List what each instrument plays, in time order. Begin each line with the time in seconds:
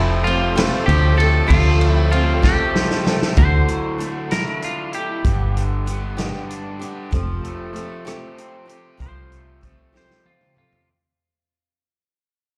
Already playing: fingered electric bass F1, steel-string acoustic guitar F3 A3 C4 G4, overdriven electric guitar A3, grand piano C4 G4 A4, clean electric guitar E4, accordion A4 G5 A5
0.24 steel-string acoustic guitar F3 A3 C4 G4, clean electric guitar F4, ride
0.55 steel-string acoustic guitar F3 A3 C4 G4, grand piano C4 F4 G4 B4, snare, ride
0.86 fingered electric bass D2, overdriven electric guitar F3, clean electric guitar G4, ride
1.17 steel-string acoustic guitar A3 C4 G4, clean electric guitar A4, ride
1.47 fingered electric bass D2, steel-string acoustic guitar F3 A3 C4 G4, grand piano C4 F4 G4 A4, clean electric guitar F4, kick, ride
1.79 overdriven electric guitar A3, ride
1.90 clean electric guitar E4
2.10 steel-string acoustic guitar F3 A3 C4 G4, clean electric guitar F4, ride
2.42 steel-string acoustic guitar F3 A3 C4 G4, grand piano C4 F4 G4 A4, clean electric guitar G4, kick, snare
2.74 overdriven electric guitar F3, snare
2.91 snare
3.04 steel-string acoustic guitar A3 C4 G4, snare
3.22 snare
3.36 fingered electric bass D2, steel-string acoustic guitar D3 A3 E4 F#4, clean electric guitar C5, kick, closed hi-hat
3.68 overdriven electric guitar F#3, closed hi-hat
3.98 steel-string acoustic guitar D3 A3 E4 F#4, closed hi-hat
4.30 steel-string acoustic guitar D3, overdriven electric guitar E4, clean electric guitar A#4, snare, closed hi-hat
4.62 overdriven electric guitar D4, clean electric guitar F4, closed hi-hat
4.93 steel-string acoustic guitar E4, clean electric guitar G4, closed hi-hat
4.97 steel-string acoustic guitar A3
5.24 fingered electric bass G1, steel-string acoustic guitar G2 D3 G3 B3 D4 G4, kick, closed hi-hat
5.55 overdriven electric guitar D3, closed hi-hat
5.86 steel-string acoustic guitar G3 B3 D4 G4, closed hi-hat
6.17 steel-string acoustic guitar G2 D3 G3 B3 D4 G4, snare, closed hi-hat
6.50 overdriven electric guitar D4, closed hi-hat
6.79 steel-string acoustic guitar G3 B3 D4 G4, closed hi-hat
7.11 fingered electric bass F1, steel-string acoustic guitar F3 A3 C4 G4, kick, closed hi-hat
7.43 overdriven electric guitar A3, closed hi-hat
7.73 steel-string acoustic guitar F3 A3 C4 G4, closed hi-hat
8.05 steel-string acoustic guitar F3 A3 C4 G4, cross-stick, closed hi-hat
8.36 overdriven electric guitar C4, closed hi-hat
8.66 steel-string acoustic guitar A3 C4 G4, closed hi-hat
8.97 fingered electric bass C2, steel-string acoustic guitar F3 A3 C4 G4, kick, closed hi-hat
9.02 clean electric guitar C5
9.30 overdriven electric guitar A3, closed hi-hat
9.61 steel-string acoustic guitar F3 A3 C4, kick, closed hi-hat
9.65 steel-string acoustic guitar G4
9.93 steel-string acoustic guitar F3 A3 C4 G4, snare
9.97 clean electric guitar C5
10.11 snare
10.24 overdriven electric guitar C4, clean electric guitar F4, high tom
10.41 mid tom
10.54 steel-string acoustic guitar A3 C4 G4, clean electric guitar F4, mid tom
10.72 floor tom